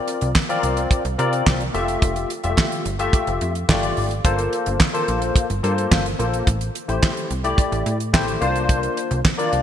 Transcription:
Already playing: C4 F4 A#4 D5
0.08 closed hi-hat
0.21 C2, closed hi-hat
0.35 kick, snare, clap
0.49 C4 F4 A#4 D5, closed hi-hat
0.63 C2, closed hi-hat
0.77 closed hi-hat
0.91 kick, closed hi-hat
1.05 C2, closed hi-hat
1.18 C3 C4 F4 A#4 D5, closed hi-hat
1.33 closed hi-hat
1.47 C2, kick, snare, clap
1.61 closed hi-hat
1.74 F1 A3 F4 G4 E5, closed hi-hat
1.88 closed hi-hat
2.02 F1, kick, closed hi-hat
2.16 closed hi-hat
2.30 closed hi-hat
2.43 F1 G3 F4 G4 E5, closed hi-hat
2.50 A3
2.58 kick, snare, clap
2.72 closed hi-hat
2.85 G1, closed hi-hat
2.99 A3 F4 G4 E5, closed hi-hat
3.13 kick, closed hi-hat
3.27 F1, closed hi-hat
3.41 F2, closed hi-hat
3.55 closed hi-hat
3.69 G1 A3 F4 G4 D5, kick, snare, clap
3.83 closed hi-hat
3.97 G#1, open hi-hat
4.11 closed hi-hat
4.25 G1 A#3 F4 A4 C5, kick, closed hi-hat
4.38 closed hi-hat
4.53 closed hi-hat
4.66 G1, closed hi-hat
4.80 kick, snare, clap
4.93 A#3 F4 A4 C5, closed hi-hat
5.08 A#1, closed hi-hat
5.22 closed hi-hat
5.36 kick, closed hi-hat
5.50 G1, closed hi-hat
5.63 G2 A#3 F4 A4 C5, closed hi-hat
5.78 closed hi-hat
5.91 G1, kick, snare, clap
6.06 closed hi-hat
6.19 A#1 A#3 F4 A4 C5, closed hi-hat
6.34 closed hi-hat
6.47 A1, kick, closed hi-hat
6.61 closed hi-hat
6.75 closed hi-hat
6.88 A1 A3 E4 G4 C5, closed hi-hat
7.03 kick, snare, clap
7.17 closed hi-hat
7.31 C2, closed hi-hat
7.44 A3 E4 G4 D5, closed hi-hat
7.58 kick, closed hi-hat
7.72 A1, closed hi-hat
7.86 A2, closed hi-hat
8.00 closed hi-hat
8.13 A1 A3 E4 G4 C5, kick, snare, clap
8.28 closed hi-hat
8.41 C2 A#3 D4 F4 C5, closed hi-hat
8.56 closed hi-hat
8.69 kick, closed hi-hat
8.83 closed hi-hat
8.97 closed hi-hat
9.11 C2, closed hi-hat
9.25 kick, snare, clap
9.38 A#3 D4 F4 D5, closed hi-hat
9.53 C2, closed hi-hat

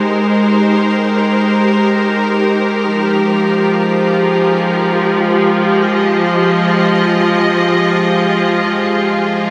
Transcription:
Already playing: G#3 D#4 G4 A#4 C5
2.91 F3
3.51 F4
4.13 G#4
5.68 D#5

